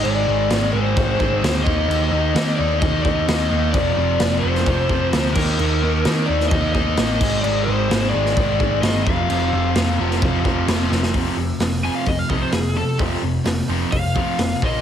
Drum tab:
CC |x---x---x---x---|x---x---x---x---|x---x---x---x-x-|x---x---x---x-x-|
HH |----------------|----------------|----------------|----------------|
SD |----o-------o---|----o-------o---|----o--o----o---|----o--o----o---|
BD |--------o-o---o-|--------o-o-----|o-------o-o---o-|--------o-o---o-|

CC |x---x---x---x---|x---x---x---x---|----------------|----------------|
HH |----------------|----------------|o---o---o---o---|o---o---o---o---|
SD |----o--o----o---|----o--o----o-oo|----o-------o---|----o-------o---|
BD |--------o-o---o-|--------o-o-----|o-------o-o-----|o-------o-o---o-|